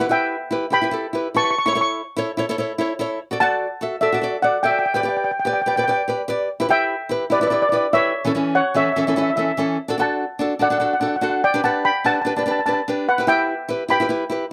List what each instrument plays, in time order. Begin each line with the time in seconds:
0.01 nylon-string guitar G4 B4
0.09 nylon-string guitar E4 G4 B4, steel pan E5 G5
0.51 nylon-string guitar E4 G4 B4
0.70 nylon-string guitar E4 G4 B4, steel pan G5 B5
0.82 nylon-string guitar E4 G4 B4
0.91 nylon-string guitar E4 G4 A4
1.13 nylon-string guitar E4 G4 B4
1.35 nylon-string guitar E4 G4 B4, steel pan A5 C#6
1.44 steel pan C#6
1.51 steel pan C#6
1.59 steel pan C#6
1.66 nylon-string guitar E4 A4 C#5, steel pan C#6
1.73 nylon-string guitar E4 A4 C#5, steel pan C#6
1.81 steel pan C#6
2.17 nylon-string guitar E4 A4 C#5
2.37 nylon-string guitar E4 A4 C#5
2.49 nylon-string guitar E4 A4 C#5
2.58 nylon-string guitar E4 A4 C#5
2.78 nylon-string guitar E4 A4 C#5
2.99 nylon-string guitar E4 A4 C#5
3.31 nylon-string guitar F#4 A4 D5
3.40 nylon-string guitar F#4 A4 D5, steel pan F#5 A5
3.81 nylon-string guitar F#4 A4 E5
4.01 nylon-string guitar F#4 A4 D5, steel pan A4 E5
4.12 nylon-string guitar F#4 A4 D5
4.21 nylon-string guitar F#4 A4 D5
4.42 nylon-string guitar F#4 A4 D5, steel pan D5 F#5
4.63 nylon-string guitar F#4 A4 D5, steel pan E5 G5
4.71 steel pan G5
4.79 steel pan G5
4.86 steel pan G5
4.94 nylon-string guitar G4 B4 D5, steel pan G5
5.00 nylon-string guitar G4 B4, steel pan G5
5.05 nylon-string guitar D5, steel pan G5
5.17 steel pan G5
5.24 steel pan G5
5.31 steel pan G5
5.39 steel pan G5
5.45 nylon-string guitar G4 B4 D5, steel pan G5
5.53 steel pan G5
5.62 steel pan G5
5.66 nylon-string guitar G4 B4 D5, steel pan G5
5.76 nylon-string guitar G4 B4 D5, steel pan G5
5.84 nylon-string guitar G4, steel pan G5
5.88 nylon-string guitar B4 D5, steel pan G5
6.08 nylon-string guitar G4 B4 D5
6.28 nylon-string guitar G4 B4 D5
6.60 nylon-string guitar E4 G4 B4
6.69 nylon-string guitar E4 G4 B4, steel pan E5 G5
7.09 nylon-string guitar E4 G4 B4
7.30 nylon-string guitar E4 G4 B4, steel pan B4 D5
7.40 nylon-string guitar E4 G4 B4, steel pan D5
7.47 nylon-string guitar E4 G4, steel pan D5
7.52 nylon-string guitar B4, steel pan D5
7.62 steel pan D5
7.69 nylon-string guitar E4 G4, steel pan D5
7.73 nylon-string guitar B4, steel pan D5
7.93 nylon-string guitar E4 G4 B4, steel pan C#5 E5
8.24 nylon-string guitar E3 C#4 E4 A4
8.35 nylon-string guitar E3 C#4 E4 A4
8.55 steel pan C#5 F#5
8.74 nylon-string guitar E3 C#4 E4 A4, steel pan C#5 E5
8.84 steel pan E5
8.92 nylon-string guitar E3, steel pan E5
8.97 nylon-string guitar C#4 E4 A4, steel pan E5
9.07 nylon-string guitar E3 C#4 E4 A4, steel pan E5
9.15 nylon-string guitar E3 C#4 E4 A4, steel pan E5
9.22 steel pan E5
9.30 steel pan E5
9.36 nylon-string guitar E3 C#4 E4 A4, steel pan E5
9.45 steel pan E5
9.57 nylon-string guitar E3 C#4 E4 A4
9.88 nylon-string guitar D4 F#4 A4
9.98 nylon-string guitar D4 F#4 A4, steel pan F#5 A5
10.39 nylon-string guitar D4 F#4 A4
10.59 nylon-string guitar D4 F#4 A4, steel pan D5 F#5
10.70 nylon-string guitar D4 F#4 A4, steel pan F#5
10.78 nylon-string guitar D4 F#4 A4, steel pan F#5
10.85 steel pan F#5
10.93 steel pan F#5
11.00 nylon-string guitar D4 F#4 A4, steel pan F#5
11.08 steel pan F#5
11.16 steel pan F#5
11.21 nylon-string guitar D4 F#4 A4, steel pan F#5
11.30 steel pan F#5
11.44 steel pan D5 G5
11.54 nylon-string guitar D4 G4 B4
11.64 nylon-string guitar D4 G4 B4, steel pan F#5 A5
11.85 steel pan G5 B5
12.04 nylon-string guitar D4 G4 B4, steel pan F#5 A5
12.14 steel pan A5
12.22 nylon-string guitar D4, steel pan A5
12.26 nylon-string guitar G4 B4, steel pan A5
12.36 nylon-string guitar D4 G4 B4, steel pan A5
12.43 nylon-string guitar D4 G4, steel pan A5
12.48 nylon-string guitar B4, steel pan A5
12.59 steel pan A5
12.66 nylon-string guitar D4 G4 B4, steel pan A5
12.73 steel pan A5
12.88 nylon-string guitar D4 G4 B4
13.09 steel pan B4 F#5
13.18 nylon-string guitar E4 G4 B4
13.27 nylon-string guitar E4 G4 B4, steel pan E5 G5
13.68 nylon-string guitar E4 G4 B4
13.88 nylon-string guitar E4 G4 B4, steel pan G5 B5
14.00 nylon-string guitar E4 G4 B4
14.09 nylon-string guitar E4 G4 B4
14.30 nylon-string guitar E4 G4 B4